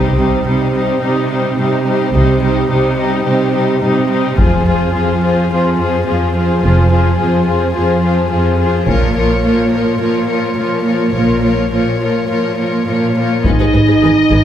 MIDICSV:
0, 0, Header, 1, 8, 480
1, 0, Start_track
1, 0, Tempo, 561272
1, 1833, Time_signature, 4, 2, 24, 8
1, 8552, Tempo, 574163
1, 12264, End_track
2, 0, Start_track
2, 0, Title_t, "Violin section"
2, 0, Program_c, 0, 48
2, 11443, Note_on_c, 0, 75, 35
2, 12264, Note_off_c, 0, 75, 0
2, 12264, End_track
3, 0, Start_track
3, 0, Title_t, "Violin section"
3, 0, Program_c, 1, 48
3, 0, Note_on_c, 1, 67, 31
3, 0, Note_on_c, 1, 72, 32
3, 154, Note_off_c, 1, 67, 0
3, 156, Note_off_c, 1, 72, 0
3, 164, Note_on_c, 1, 67, 28
3, 167, Note_on_c, 1, 72, 29
3, 393, Note_off_c, 1, 67, 0
3, 394, Note_off_c, 1, 72, 0
3, 404, Note_on_c, 1, 67, 24
3, 405, Note_on_c, 1, 72, 29
3, 635, Note_off_c, 1, 67, 0
3, 635, Note_off_c, 1, 72, 0
3, 647, Note_on_c, 1, 72, 28
3, 651, Note_on_c, 1, 67, 29
3, 872, Note_off_c, 1, 67, 0
3, 876, Note_off_c, 1, 72, 0
3, 882, Note_on_c, 1, 67, 30
3, 892, Note_on_c, 1, 72, 32
3, 1106, Note_off_c, 1, 67, 0
3, 1108, Note_off_c, 1, 72, 0
3, 1117, Note_on_c, 1, 67, 27
3, 1118, Note_on_c, 1, 72, 29
3, 1347, Note_off_c, 1, 67, 0
3, 1351, Note_off_c, 1, 72, 0
3, 1357, Note_on_c, 1, 67, 30
3, 1365, Note_on_c, 1, 72, 28
3, 1587, Note_off_c, 1, 72, 0
3, 1590, Note_off_c, 1, 67, 0
3, 1597, Note_on_c, 1, 72, 31
3, 1599, Note_on_c, 1, 67, 32
3, 1830, Note_off_c, 1, 72, 0
3, 1831, Note_off_c, 1, 67, 0
3, 1840, Note_on_c, 1, 72, 40
3, 1843, Note_on_c, 1, 67, 35
3, 2063, Note_off_c, 1, 72, 0
3, 2064, Note_off_c, 1, 67, 0
3, 2073, Note_on_c, 1, 72, 31
3, 2074, Note_on_c, 1, 67, 36
3, 2293, Note_off_c, 1, 67, 0
3, 2294, Note_off_c, 1, 72, 0
3, 2303, Note_on_c, 1, 67, 30
3, 2304, Note_on_c, 1, 72, 33
3, 2528, Note_off_c, 1, 67, 0
3, 2528, Note_off_c, 1, 72, 0
3, 2538, Note_on_c, 1, 67, 33
3, 2539, Note_on_c, 1, 72, 30
3, 2771, Note_off_c, 1, 67, 0
3, 2774, Note_off_c, 1, 72, 0
3, 2781, Note_on_c, 1, 67, 37
3, 2785, Note_on_c, 1, 72, 35
3, 3010, Note_off_c, 1, 67, 0
3, 3014, Note_off_c, 1, 72, 0
3, 3020, Note_on_c, 1, 67, 35
3, 3024, Note_on_c, 1, 72, 32
3, 3249, Note_off_c, 1, 72, 0
3, 3251, Note_off_c, 1, 67, 0
3, 3259, Note_on_c, 1, 72, 34
3, 3261, Note_on_c, 1, 67, 31
3, 3492, Note_off_c, 1, 72, 0
3, 3493, Note_off_c, 1, 67, 0
3, 3502, Note_on_c, 1, 72, 33
3, 3503, Note_on_c, 1, 67, 34
3, 3737, Note_off_c, 1, 72, 0
3, 3741, Note_off_c, 1, 67, 0
3, 3745, Note_on_c, 1, 68, 40
3, 3747, Note_on_c, 1, 72, 40
3, 3981, Note_off_c, 1, 68, 0
3, 3982, Note_off_c, 1, 72, 0
3, 3990, Note_on_c, 1, 68, 36
3, 3993, Note_on_c, 1, 72, 36
3, 4211, Note_off_c, 1, 68, 0
3, 4213, Note_off_c, 1, 72, 0
3, 4221, Note_on_c, 1, 68, 30
3, 4223, Note_on_c, 1, 72, 36
3, 4455, Note_off_c, 1, 68, 0
3, 4461, Note_off_c, 1, 72, 0
3, 4465, Note_on_c, 1, 68, 33
3, 4471, Note_on_c, 1, 72, 36
3, 4702, Note_off_c, 1, 68, 0
3, 4705, Note_off_c, 1, 72, 0
3, 4714, Note_on_c, 1, 68, 33
3, 4717, Note_on_c, 1, 72, 35
3, 4933, Note_off_c, 1, 68, 0
3, 4936, Note_off_c, 1, 72, 0
3, 4943, Note_on_c, 1, 68, 35
3, 4946, Note_on_c, 1, 72, 38
3, 5174, Note_off_c, 1, 68, 0
3, 5176, Note_off_c, 1, 72, 0
3, 5185, Note_on_c, 1, 68, 31
3, 5186, Note_on_c, 1, 72, 29
3, 5422, Note_off_c, 1, 68, 0
3, 5422, Note_off_c, 1, 72, 0
3, 5431, Note_on_c, 1, 68, 35
3, 5432, Note_on_c, 1, 72, 35
3, 5653, Note_off_c, 1, 72, 0
3, 5659, Note_off_c, 1, 68, 0
3, 5663, Note_on_c, 1, 72, 40
3, 5669, Note_on_c, 1, 68, 35
3, 5897, Note_off_c, 1, 68, 0
3, 5900, Note_off_c, 1, 72, 0
3, 5907, Note_on_c, 1, 68, 37
3, 5909, Note_on_c, 1, 72, 33
3, 6130, Note_off_c, 1, 68, 0
3, 6139, Note_off_c, 1, 72, 0
3, 6141, Note_on_c, 1, 68, 32
3, 6150, Note_on_c, 1, 72, 33
3, 6379, Note_off_c, 1, 68, 0
3, 6379, Note_off_c, 1, 72, 0
3, 6389, Note_on_c, 1, 72, 35
3, 6390, Note_on_c, 1, 68, 32
3, 6611, Note_off_c, 1, 68, 0
3, 6611, Note_off_c, 1, 72, 0
3, 6621, Note_on_c, 1, 68, 37
3, 6621, Note_on_c, 1, 72, 37
3, 6859, Note_off_c, 1, 68, 0
3, 6859, Note_off_c, 1, 72, 0
3, 6869, Note_on_c, 1, 72, 31
3, 6871, Note_on_c, 1, 68, 31
3, 7085, Note_off_c, 1, 72, 0
3, 7090, Note_off_c, 1, 68, 0
3, 7095, Note_on_c, 1, 72, 27
3, 7101, Note_on_c, 1, 68, 32
3, 7332, Note_off_c, 1, 72, 0
3, 7334, Note_off_c, 1, 68, 0
3, 7342, Note_on_c, 1, 72, 33
3, 7344, Note_on_c, 1, 68, 31
3, 7581, Note_off_c, 1, 72, 0
3, 7582, Note_off_c, 1, 68, 0
3, 7584, Note_on_c, 1, 73, 38
3, 7585, Note_on_c, 1, 70, 39
3, 7819, Note_off_c, 1, 70, 0
3, 7822, Note_off_c, 1, 73, 0
3, 7830, Note_on_c, 1, 70, 34
3, 7836, Note_on_c, 1, 73, 34
3, 8064, Note_off_c, 1, 70, 0
3, 8068, Note_off_c, 1, 73, 0
3, 8077, Note_on_c, 1, 70, 27
3, 8080, Note_on_c, 1, 73, 30
3, 8298, Note_off_c, 1, 73, 0
3, 8304, Note_off_c, 1, 70, 0
3, 8309, Note_on_c, 1, 73, 26
3, 8314, Note_on_c, 1, 70, 30
3, 8542, Note_off_c, 1, 73, 0
3, 8548, Note_off_c, 1, 70, 0
3, 8553, Note_on_c, 1, 73, 27
3, 8559, Note_on_c, 1, 70, 27
3, 8770, Note_off_c, 1, 70, 0
3, 8770, Note_off_c, 1, 73, 0
3, 8780, Note_on_c, 1, 70, 27
3, 8780, Note_on_c, 1, 73, 26
3, 9006, Note_off_c, 1, 70, 0
3, 9007, Note_off_c, 1, 73, 0
3, 9016, Note_on_c, 1, 70, 23
3, 9017, Note_on_c, 1, 73, 24
3, 9239, Note_off_c, 1, 73, 0
3, 9242, Note_off_c, 1, 70, 0
3, 9249, Note_on_c, 1, 73, 25
3, 9252, Note_on_c, 1, 70, 25
3, 9476, Note_off_c, 1, 73, 0
3, 9483, Note_off_c, 1, 70, 0
3, 9486, Note_on_c, 1, 73, 29
3, 9493, Note_on_c, 1, 70, 28
3, 9733, Note_off_c, 1, 73, 0
3, 9736, Note_off_c, 1, 70, 0
3, 9746, Note_on_c, 1, 70, 25
3, 9749, Note_on_c, 1, 73, 25
3, 9976, Note_off_c, 1, 73, 0
3, 9981, Note_off_c, 1, 70, 0
3, 9986, Note_on_c, 1, 73, 22
3, 9991, Note_on_c, 1, 70, 24
3, 10220, Note_off_c, 1, 73, 0
3, 10228, Note_off_c, 1, 70, 0
3, 10230, Note_on_c, 1, 73, 24
3, 10236, Note_on_c, 1, 70, 25
3, 10455, Note_off_c, 1, 73, 0
3, 10456, Note_off_c, 1, 70, 0
3, 10465, Note_on_c, 1, 73, 24
3, 10466, Note_on_c, 1, 70, 28
3, 10689, Note_off_c, 1, 70, 0
3, 10693, Note_off_c, 1, 73, 0
3, 10699, Note_on_c, 1, 70, 23
3, 10704, Note_on_c, 1, 73, 25
3, 10942, Note_off_c, 1, 70, 0
3, 10944, Note_off_c, 1, 73, 0
3, 10953, Note_on_c, 1, 70, 21
3, 10953, Note_on_c, 1, 73, 22
3, 11189, Note_off_c, 1, 73, 0
3, 11192, Note_off_c, 1, 70, 0
3, 11199, Note_on_c, 1, 73, 22
3, 11200, Note_on_c, 1, 70, 22
3, 11434, Note_on_c, 1, 71, 42
3, 11436, Note_off_c, 1, 73, 0
3, 11437, Note_off_c, 1, 70, 0
3, 11483, Note_off_c, 1, 71, 0
3, 11561, Note_on_c, 1, 71, 27
3, 11608, Note_off_c, 1, 71, 0
3, 11672, Note_on_c, 1, 71, 24
3, 11721, Note_off_c, 1, 71, 0
3, 11799, Note_on_c, 1, 71, 28
3, 11846, Note_off_c, 1, 71, 0
3, 11923, Note_on_c, 1, 71, 33
3, 11969, Note_off_c, 1, 71, 0
3, 12157, Note_on_c, 1, 71, 26
3, 12204, Note_off_c, 1, 71, 0
3, 12264, End_track
4, 0, Start_track
4, 0, Title_t, "Viola section"
4, 0, Program_c, 2, 48
4, 0, Note_on_c, 2, 55, 30
4, 0, Note_on_c, 2, 63, 32
4, 134, Note_off_c, 2, 55, 0
4, 134, Note_off_c, 2, 63, 0
4, 144, Note_on_c, 2, 55, 30
4, 144, Note_on_c, 2, 63, 26
4, 385, Note_off_c, 2, 63, 0
4, 386, Note_off_c, 2, 55, 0
4, 396, Note_on_c, 2, 55, 28
4, 397, Note_on_c, 2, 63, 29
4, 631, Note_off_c, 2, 55, 0
4, 632, Note_off_c, 2, 63, 0
4, 642, Note_on_c, 2, 55, 31
4, 642, Note_on_c, 2, 63, 30
4, 865, Note_off_c, 2, 63, 0
4, 870, Note_off_c, 2, 55, 0
4, 875, Note_on_c, 2, 63, 33
4, 880, Note_on_c, 2, 55, 34
4, 1106, Note_off_c, 2, 63, 0
4, 1112, Note_off_c, 2, 55, 0
4, 1116, Note_on_c, 2, 63, 27
4, 1122, Note_on_c, 2, 55, 30
4, 1344, Note_off_c, 2, 63, 0
4, 1347, Note_off_c, 2, 55, 0
4, 1354, Note_on_c, 2, 63, 28
4, 1357, Note_on_c, 2, 55, 30
4, 1573, Note_off_c, 2, 63, 0
4, 1575, Note_off_c, 2, 55, 0
4, 1583, Note_on_c, 2, 63, 29
4, 1586, Note_on_c, 2, 55, 29
4, 1819, Note_off_c, 2, 63, 0
4, 1821, Note_off_c, 2, 55, 0
4, 1830, Note_on_c, 2, 63, 32
4, 1831, Note_on_c, 2, 55, 36
4, 2055, Note_off_c, 2, 55, 0
4, 2056, Note_off_c, 2, 63, 0
4, 2066, Note_on_c, 2, 55, 32
4, 2066, Note_on_c, 2, 63, 32
4, 2289, Note_off_c, 2, 55, 0
4, 2291, Note_off_c, 2, 63, 0
4, 2299, Note_on_c, 2, 55, 32
4, 2301, Note_on_c, 2, 63, 35
4, 2536, Note_off_c, 2, 55, 0
4, 2536, Note_off_c, 2, 63, 0
4, 2546, Note_on_c, 2, 63, 36
4, 2547, Note_on_c, 2, 55, 33
4, 2775, Note_off_c, 2, 63, 0
4, 2778, Note_off_c, 2, 55, 0
4, 2785, Note_on_c, 2, 63, 34
4, 2788, Note_on_c, 2, 55, 34
4, 3015, Note_off_c, 2, 63, 0
4, 3017, Note_off_c, 2, 55, 0
4, 3025, Note_on_c, 2, 63, 31
4, 3028, Note_on_c, 2, 55, 30
4, 3253, Note_off_c, 2, 63, 0
4, 3254, Note_off_c, 2, 55, 0
4, 3263, Note_on_c, 2, 63, 34
4, 3265, Note_on_c, 2, 55, 31
4, 3493, Note_off_c, 2, 55, 0
4, 3495, Note_off_c, 2, 63, 0
4, 3503, Note_on_c, 2, 55, 32
4, 3505, Note_on_c, 2, 63, 37
4, 3740, Note_on_c, 2, 53, 37
4, 3741, Note_off_c, 2, 55, 0
4, 3741, Note_on_c, 2, 65, 37
4, 3742, Note_off_c, 2, 63, 0
4, 3971, Note_off_c, 2, 53, 0
4, 3971, Note_off_c, 2, 65, 0
4, 3981, Note_on_c, 2, 53, 35
4, 3981, Note_on_c, 2, 65, 35
4, 4215, Note_off_c, 2, 53, 0
4, 4215, Note_off_c, 2, 65, 0
4, 4225, Note_on_c, 2, 53, 32
4, 4225, Note_on_c, 2, 65, 35
4, 4454, Note_off_c, 2, 65, 0
4, 4455, Note_off_c, 2, 53, 0
4, 4464, Note_on_c, 2, 65, 40
4, 4466, Note_on_c, 2, 53, 34
4, 4702, Note_off_c, 2, 53, 0
4, 4702, Note_off_c, 2, 65, 0
4, 4715, Note_on_c, 2, 65, 35
4, 4717, Note_on_c, 2, 53, 39
4, 4943, Note_off_c, 2, 53, 0
4, 4944, Note_off_c, 2, 65, 0
4, 4953, Note_on_c, 2, 53, 35
4, 4954, Note_on_c, 2, 65, 30
4, 5176, Note_off_c, 2, 53, 0
4, 5179, Note_off_c, 2, 65, 0
4, 5186, Note_on_c, 2, 53, 33
4, 5190, Note_on_c, 2, 65, 34
4, 5415, Note_off_c, 2, 53, 0
4, 5415, Note_off_c, 2, 65, 0
4, 5425, Note_on_c, 2, 53, 32
4, 5425, Note_on_c, 2, 65, 31
4, 5653, Note_off_c, 2, 65, 0
4, 5655, Note_off_c, 2, 53, 0
4, 5663, Note_on_c, 2, 65, 41
4, 5666, Note_on_c, 2, 53, 38
4, 5893, Note_off_c, 2, 53, 0
4, 5893, Note_off_c, 2, 65, 0
4, 5904, Note_on_c, 2, 53, 34
4, 5904, Note_on_c, 2, 65, 35
4, 6132, Note_off_c, 2, 53, 0
4, 6132, Note_off_c, 2, 65, 0
4, 6142, Note_on_c, 2, 65, 32
4, 6143, Note_on_c, 2, 53, 31
4, 6365, Note_off_c, 2, 53, 0
4, 6366, Note_off_c, 2, 65, 0
4, 6376, Note_on_c, 2, 53, 35
4, 6377, Note_on_c, 2, 65, 33
4, 6613, Note_off_c, 2, 65, 0
4, 6616, Note_off_c, 2, 53, 0
4, 6624, Note_on_c, 2, 65, 37
4, 6626, Note_on_c, 2, 53, 36
4, 6849, Note_off_c, 2, 53, 0
4, 6856, Note_off_c, 2, 65, 0
4, 6859, Note_on_c, 2, 53, 30
4, 6866, Note_on_c, 2, 65, 33
4, 7098, Note_off_c, 2, 53, 0
4, 7098, Note_off_c, 2, 65, 0
4, 7108, Note_on_c, 2, 53, 33
4, 7109, Note_on_c, 2, 65, 33
4, 7343, Note_off_c, 2, 53, 0
4, 7344, Note_off_c, 2, 65, 0
4, 7355, Note_on_c, 2, 53, 31
4, 7356, Note_on_c, 2, 65, 32
4, 7585, Note_off_c, 2, 65, 0
4, 7587, Note_off_c, 2, 53, 0
4, 7595, Note_on_c, 2, 65, 35
4, 7597, Note_on_c, 2, 53, 33
4, 7818, Note_off_c, 2, 65, 0
4, 7824, Note_off_c, 2, 53, 0
4, 7829, Note_on_c, 2, 65, 31
4, 7835, Note_on_c, 2, 53, 33
4, 8064, Note_off_c, 2, 65, 0
4, 8067, Note_off_c, 2, 53, 0
4, 8074, Note_on_c, 2, 65, 30
4, 8078, Note_on_c, 2, 53, 30
4, 8304, Note_off_c, 2, 53, 0
4, 8307, Note_off_c, 2, 65, 0
4, 8315, Note_on_c, 2, 53, 30
4, 8319, Note_on_c, 2, 65, 31
4, 8549, Note_off_c, 2, 53, 0
4, 8551, Note_off_c, 2, 65, 0
4, 8558, Note_on_c, 2, 53, 30
4, 8560, Note_on_c, 2, 65, 30
4, 8782, Note_off_c, 2, 53, 0
4, 8785, Note_off_c, 2, 65, 0
4, 8792, Note_on_c, 2, 53, 28
4, 8795, Note_on_c, 2, 65, 25
4, 9019, Note_off_c, 2, 65, 0
4, 9024, Note_off_c, 2, 53, 0
4, 9029, Note_on_c, 2, 65, 25
4, 9034, Note_on_c, 2, 53, 27
4, 9254, Note_off_c, 2, 53, 0
4, 9258, Note_off_c, 2, 65, 0
4, 9264, Note_on_c, 2, 53, 26
4, 9268, Note_on_c, 2, 65, 22
4, 9487, Note_off_c, 2, 53, 0
4, 9489, Note_off_c, 2, 65, 0
4, 9497, Note_on_c, 2, 53, 27
4, 9499, Note_on_c, 2, 65, 28
4, 9737, Note_off_c, 2, 65, 0
4, 9738, Note_off_c, 2, 53, 0
4, 9747, Note_on_c, 2, 65, 23
4, 9749, Note_on_c, 2, 53, 23
4, 9983, Note_off_c, 2, 53, 0
4, 9983, Note_off_c, 2, 65, 0
4, 9993, Note_on_c, 2, 53, 22
4, 9993, Note_on_c, 2, 65, 24
4, 10213, Note_off_c, 2, 53, 0
4, 10214, Note_off_c, 2, 65, 0
4, 10223, Note_on_c, 2, 53, 24
4, 10224, Note_on_c, 2, 65, 26
4, 10457, Note_off_c, 2, 65, 0
4, 10459, Note_off_c, 2, 53, 0
4, 10467, Note_on_c, 2, 65, 25
4, 10469, Note_on_c, 2, 53, 23
4, 10693, Note_off_c, 2, 53, 0
4, 10697, Note_off_c, 2, 65, 0
4, 10703, Note_on_c, 2, 53, 22
4, 10707, Note_on_c, 2, 65, 23
4, 10937, Note_off_c, 2, 65, 0
4, 10939, Note_off_c, 2, 53, 0
4, 10947, Note_on_c, 2, 65, 23
4, 10949, Note_on_c, 2, 53, 23
4, 11184, Note_off_c, 2, 53, 0
4, 11184, Note_off_c, 2, 65, 0
4, 11194, Note_on_c, 2, 53, 24
4, 11194, Note_on_c, 2, 65, 25
4, 11433, Note_on_c, 2, 68, 39
4, 11434, Note_off_c, 2, 53, 0
4, 11434, Note_off_c, 2, 65, 0
4, 11483, Note_off_c, 2, 68, 0
4, 11562, Note_on_c, 2, 68, 23
4, 11609, Note_off_c, 2, 68, 0
4, 11677, Note_on_c, 2, 68, 28
4, 11725, Note_off_c, 2, 68, 0
4, 11790, Note_on_c, 2, 68, 29
4, 11839, Note_off_c, 2, 68, 0
4, 11909, Note_on_c, 2, 68, 38
4, 11958, Note_off_c, 2, 68, 0
4, 12152, Note_on_c, 2, 68, 35
4, 12200, Note_off_c, 2, 68, 0
4, 12264, End_track
5, 0, Start_track
5, 0, Title_t, "French horn section"
5, 0, Program_c, 3, 60
5, 11196, Note_on_c, 3, 58, 38
5, 11423, Note_off_c, 3, 58, 0
5, 11452, Note_on_c, 3, 63, 55
5, 12264, Note_off_c, 3, 63, 0
5, 12264, End_track
6, 0, Start_track
6, 0, Title_t, "Cello section"
6, 0, Program_c, 4, 48
6, 0, Note_on_c, 4, 48, 38
6, 341, Note_off_c, 4, 48, 0
6, 400, Note_on_c, 4, 48, 36
6, 821, Note_off_c, 4, 48, 0
6, 874, Note_on_c, 4, 48, 42
6, 1297, Note_off_c, 4, 48, 0
6, 1357, Note_on_c, 4, 48, 37
6, 1778, Note_off_c, 4, 48, 0
6, 1830, Note_on_c, 4, 48, 41
6, 2253, Note_off_c, 4, 48, 0
6, 2312, Note_on_c, 4, 48, 42
6, 2736, Note_off_c, 4, 48, 0
6, 2795, Note_on_c, 4, 48, 38
6, 3217, Note_off_c, 4, 48, 0
6, 3280, Note_on_c, 4, 48, 42
6, 3697, Note_off_c, 4, 48, 0
6, 3759, Note_on_c, 4, 41, 43
6, 4176, Note_off_c, 4, 41, 0
6, 4233, Note_on_c, 4, 41, 41
6, 4655, Note_off_c, 4, 41, 0
6, 4721, Note_on_c, 4, 41, 44
6, 5138, Note_off_c, 4, 41, 0
6, 5199, Note_on_c, 4, 41, 46
6, 5617, Note_off_c, 4, 41, 0
6, 5672, Note_on_c, 4, 41, 48
6, 6093, Note_off_c, 4, 41, 0
6, 6159, Note_on_c, 4, 41, 41
6, 6576, Note_off_c, 4, 41, 0
6, 6639, Note_on_c, 4, 41, 42
6, 7056, Note_off_c, 4, 41, 0
6, 7125, Note_on_c, 4, 41, 39
6, 7541, Note_off_c, 4, 41, 0
6, 7597, Note_on_c, 4, 46, 39
6, 8017, Note_off_c, 4, 46, 0
6, 8080, Note_on_c, 4, 46, 38
6, 8499, Note_off_c, 4, 46, 0
6, 8561, Note_on_c, 4, 46, 35
6, 8976, Note_off_c, 4, 46, 0
6, 9030, Note_on_c, 4, 46, 34
6, 9451, Note_off_c, 4, 46, 0
6, 9509, Note_on_c, 4, 46, 33
6, 9934, Note_off_c, 4, 46, 0
6, 9992, Note_on_c, 4, 46, 29
6, 10418, Note_off_c, 4, 46, 0
6, 10472, Note_on_c, 4, 46, 29
6, 10897, Note_off_c, 4, 46, 0
6, 10955, Note_on_c, 4, 46, 30
6, 11384, Note_off_c, 4, 46, 0
6, 11443, Note_on_c, 4, 44, 40
6, 11491, Note_off_c, 4, 44, 0
6, 11559, Note_on_c, 4, 44, 30
6, 11607, Note_off_c, 4, 44, 0
6, 11679, Note_on_c, 4, 44, 29
6, 11727, Note_off_c, 4, 44, 0
6, 11801, Note_on_c, 4, 44, 31
6, 11848, Note_off_c, 4, 44, 0
6, 11926, Note_on_c, 4, 44, 45
6, 11971, Note_off_c, 4, 44, 0
6, 12158, Note_on_c, 4, 44, 28
6, 12205, Note_off_c, 4, 44, 0
6, 12264, End_track
7, 0, Start_track
7, 0, Title_t, "Double bass section"
7, 0, Program_c, 5, 48
7, 0, Note_on_c, 5, 36, 35
7, 317, Note_off_c, 5, 36, 0
7, 1830, Note_on_c, 5, 36, 35
7, 2231, Note_off_c, 5, 36, 0
7, 3745, Note_on_c, 5, 29, 40
7, 4147, Note_off_c, 5, 29, 0
7, 5672, Note_on_c, 5, 29, 42
7, 6071, Note_off_c, 5, 29, 0
7, 7588, Note_on_c, 5, 34, 36
7, 7990, Note_off_c, 5, 34, 0
7, 9507, Note_on_c, 5, 34, 29
7, 9911, Note_off_c, 5, 34, 0
7, 11441, Note_on_c, 5, 32, 34
7, 11489, Note_off_c, 5, 32, 0
7, 11680, Note_on_c, 5, 32, 31
7, 11728, Note_off_c, 5, 32, 0
7, 11920, Note_on_c, 5, 32, 44
7, 11967, Note_off_c, 5, 32, 0
7, 12155, Note_on_c, 5, 32, 32
7, 12202, Note_off_c, 5, 32, 0
7, 12264, End_track
8, 0, Start_track
8, 0, Title_t, "Taiko and cinematic ensemble drums"
8, 3748, Note_on_c, 9, 41, 38
8, 3834, Note_off_c, 9, 41, 0
8, 7584, Note_on_c, 9, 41, 36
8, 7669, Note_off_c, 9, 41, 0
8, 11433, Note_on_c, 9, 41, 40
8, 11517, Note_off_c, 9, 41, 0
8, 12155, Note_on_c, 9, 41, 26
8, 12238, Note_off_c, 9, 41, 0
8, 12264, End_track
0, 0, End_of_file